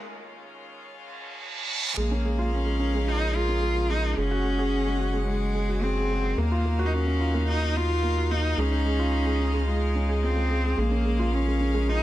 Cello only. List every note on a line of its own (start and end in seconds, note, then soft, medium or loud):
1.98 2.54 A#3 medium
2.53 3.09 C#4 medium
3.08 3.36 D#4 loud
3.35 3.91 F4 loud
3.90 4.19 D#4 medium
4.18 5.27 C#4 loud
5.28 5.85 G#3 loud
5.83 6.39 C4 loud
6.38 6.87 A#3 medium
6.86 6.95 D#4 medium
6.93 7.47 C#4 loud
7.48 7.77 D#4 loud
7.76 8.33 F4 loud
8.31 8.60 D#4 loud
8.59 9.69 C#4 loud
9.69 10.25 G#3 medium
10.24 10.80 C4 loud
10.79 11.35 A#3 loud
11.34 11.90 C#4 loud
11.89 12.03 D#4 loud